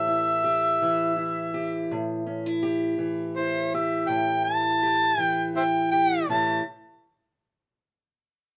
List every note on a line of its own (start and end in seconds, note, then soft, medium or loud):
0.00 1.91 A2 medium
0.00 0.82 E3 medium
0.00 1.87 C#4 medium
0.00 0.44 G4 medium
0.00 1.86 E5 loud
0.07 1.16 E4 medium
0.44 1.54 G4 medium
0.82 2.97 E3 medium
1.16 2.26 E4 medium
1.54 1.94 G4 medium
1.91 4.08 A2 medium
2.26 2.46 C#4 medium
2.46 3.36 E4 soft
2.63 3.72 G4 medium
2.98 5.17 E3 medium
3.36 4.45 E4 medium
3.36 3.71 C5 loud
3.74 4.81 G4 medium
3.74 4.10 E5 medium
4.09 6.22 A2 medium
4.09 4.44 G5 medium
4.45 5.54 E4 medium
4.45 5.21 A5 loud
4.83 5.91 G4 medium
5.18 6.28 E3 medium
5.18 5.50 G5 loud
5.55 6.23 E4 medium
5.55 5.63 C5 medium
5.55 5.64 E5 medium
5.55 5.90 G5 medium
5.91 6.23 G4 medium
5.91 6.26 G5 loud
6.28 6.60 A2 medium
6.28 6.60 E3 medium
6.28 6.61 C#4 medium
6.28 6.62 E4 medium
6.28 6.62 G4 medium
6.28 6.62 A5 medium